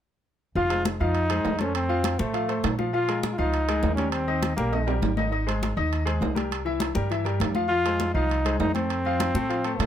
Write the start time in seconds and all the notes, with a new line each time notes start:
0.55 F1 F3 F4 F5, high conga
0.69 G#3 G#4 C5, high conga, high timbale
0.85 high conga, high timbale, low timbale
1.00 F2 F3 D#4 F4 F5, high conga
1.15 high conga, high timbale
1.30 G#3 G#4 C5, high conga, high timbale
1.45 F2, high conga, low timbale
1.59 A3 C#4 A4 C5, high conga, high timbale
1.75 C4, high conga, high timbale
1.89 F3 F4 F5, high conga
2.04 high conga, high timbale, low timbale
2.19 A2 A3 A4 C5, high conga
2.33 F3 F4 F5, high conga, high timbale
2.48 A3 A4 C5, high conga, high timbale
2.64 A#2, high conga, high timbale, low timbale
2.78 F3 F4 F5, high conga
2.93 F3 F4 F5, high conga
3.08 G#3 G#4 A#4, high conga, high timbale
3.23 high conga, high timbale, low timbale
3.33 F4
3.38 C#2 F3 D#4 F4 F5, high conga
3.53 high conga, high timbale
3.68 G#3 G#4 A#4, high conga, high timbale
3.83 D#2, high conga, low timbale
3.95 G3 C#4 G4 A#4, high conga, high timbale
4.11 C4, high conga, high timbale
4.27 D#3 D#4 D#5, high conga
4.43 high conga, high timbale, low timbale
4.57 A#1 G3 A#3 G4 A#4, high conga
4.72 D#3 D#4 D#5, high conga, high timbale
4.87 G3 G4 A#4, high conga, high timbale
5.02 G#1, high conga, low timbale
5.17 D#3 D#4 D#5, high conga, low timbale
5.32 D#3 D#4 D#5, high conga
5.47 G#3 G#4 C5, high conga, high timbale
5.63 high conga, high timbale, low timbale
5.77 D#2 D#3 D#4 D#5, high conga
5.93 high conga, high timbale
6.06 G#3 G#4 C5, high conga, high timbale
6.21 C2, high conga, low timbale
6.34 G3 G4 A#4, high conga, high timbale
6.51 high conga, high timbale
6.65 E3 E4 E5, high conga
6.80 high conga, high timbale, low timbale
6.94 G2 G3 G4 A#4, high conga
7.10 E3 E4 E5, high conga, high timbale
7.24 G3 G4 A#4, high conga, high timbale
7.40 F2, high conga, high timbale, low timbale
7.55 F3 F4 F5, high conga
7.69 F3 F4 F5, high conga
7.85 G#3 G#4 C5, high conga, high timbale
8.00 high conga, high timbale, low timbale
8.14 C2 F3 D#4 F4 F5, high conga
8.30 high conga, high timbale
8.45 G#3 G#4 C5, high conga, high timbale
8.60 F2 D#4, high conga, low timbale
8.75 A3 C4 A4 C5, high conga, high timbale
8.90 high conga, high timbale
9.05 F3 F4 F5, high conga
9.20 high conga, high timbale, low timbale
9.34 A2 A3 A4 C5, high conga
9.49 F3 F4 F5, high conga, high timbale
9.64 A3 A4 C5, high conga, high timbale
9.78 A#2 A3, high conga, high timbale, low timbale